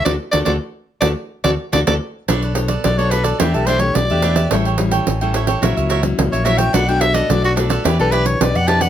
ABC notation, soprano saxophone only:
X:1
M:4/4
L:1/16
Q:1/4=108
K:D
V:1 name="Soprano saxophone"
d z d d z3 d z2 d z d d z2 | [K:Bm] z4 d c B A G A =c ^c d4 | z12 z c e g | f g e ^d =d F z3 A B c d f a f |]